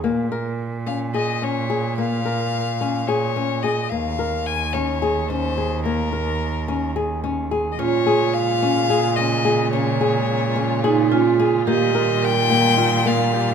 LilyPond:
<<
  \new Staff \with { instrumentName = "Violin" } { \time 7/8 \key des \lydian \tempo 4 = 108 r4. f''8 ees''8 des''4 | f''2 des''4 ees''8 | f''4 aes''8 des''4 c''4 | bes'2 r4 r16. ees''32 |
des''4 f''4. ees''4 | des''2. r8 | ees''4 g''4. f''4 | }
  \new Staff \with { instrumentName = "Vibraphone" } { \time 7/8 \key des \lydian r2. r8 | r2. r8 | r2. r8 | r2. r8 |
f'2.~ f'8~ | f'2 ees'8 f'4 | g'4 bes'2~ bes'8 | }
  \new Staff \with { instrumentName = "Nylon-string guitar" } { \time 7/8 \key des \lydian bes8 bes'4 des'8 aes'8 des'8 aes'8 | bes8 bes'4 des'8 aes'8 des'8 aes'8 | bes8 bes'4 des'8 aes'8 des'8 aes'8 | bes8 bes'4 des'8 aes'8 des'8 aes'8 |
des'8 aes'4 des'8 aes'8 des'8 aes'8 | des'8 aes'4 des'8 aes'8 des'8 aes'8 | bes8 bes'4 bes8 f'8 bes8 g'8 | }
  \new Staff \with { instrumentName = "String section" } { \clef bass \time 7/8 \key des \lydian << { r2. r8 | r2. r8 | r2. r8 | r2. r8 |
f'2.~ f'8~ | f'2.~ f'8~ | f'2.~ f'8 | } \\ { r2. r8 | r2. r8 | r2. r8 | r2. r8 |
<des aes>2.~ <des aes>8~ | <des aes>2.~ <des aes>8 | <ees g>2.~ <ees g>8 | } >> }
  \new Staff \with { instrumentName = "Cello" } { \clef bass \time 7/8 \key des \lydian bes,2.~ bes,8~ | bes,2.~ bes,8 | ees,2.~ ees,8~ | ees,2.~ ees,8 |
bes,2.~ bes,8~ | bes,2.~ bes,8 | bes,2.~ bes,8 | }
>>